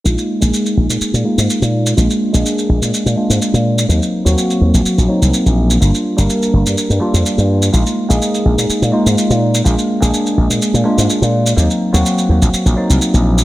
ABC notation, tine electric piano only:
X:1
M:4/4
L:1/16
Q:1/4=125
K:Bbmix
V:1 name="Tine electric piano"
[A,B,EF]3 [A,B,EA]6- [A,B,EA] [A,B,EF]6 | [A,B,DF]3 [A,B,DA]6- [A,B,DA] [A,B,DF]6 | [_G,B,CE]3 [G,B,C_G]6- [G,B,CG] [G,B,CE]6 | [G,B,DF]3 [G,B,DB]6- [G,B,DB] [G,B,DF]6 |
[A,B,EF]3 [A,B,EA]6- [A,B,EA] [A,B,EF]6 | [A,B,DF]3 [A,B,DA]6- [A,B,DA] [A,B,DF]6 | [_G,B,CE]3 [G,B,C_G]6- [G,B,CG] [G,B,CE]6 |]